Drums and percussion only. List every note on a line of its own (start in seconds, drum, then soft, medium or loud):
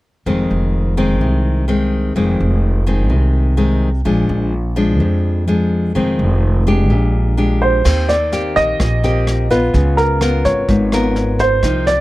7.85 kick medium
7.85 cross-stick soft
7.85 snare soft
7.85 crash soft
8.09 snare soft
8.32 snare soft
8.56 kick soft
8.56 snare soft
8.80 kick medium
8.80 cross-stick medium
8.80 snare soft
9.04 snare soft
9.27 cross-stick medium
9.27 snare soft
9.51 kick soft
9.51 snare soft
9.74 kick soft
9.74 snare soft
9.98 snare soft
10.21 cross-stick medium
10.21 snare soft
10.45 kick soft
10.45 snare soft
10.68 kick medium
10.68 snare soft
10.92 cross-stick medium
10.92 snare soft
11.16 snare soft
11.39 kick soft
11.39 snare soft
11.63 kick soft
11.63 cross-stick soft
11.63 snare soft
11.87 snare soft